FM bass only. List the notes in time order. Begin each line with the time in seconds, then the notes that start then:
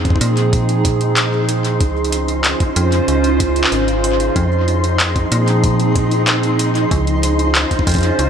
Already playing: F2
0.21 A#2
1.81 C#2
2.76 F2
3.08 C#2
3.72 G#1
4.36 F2
5.32 A#2
6.91 C#2
7.87 F2
8.19 C#2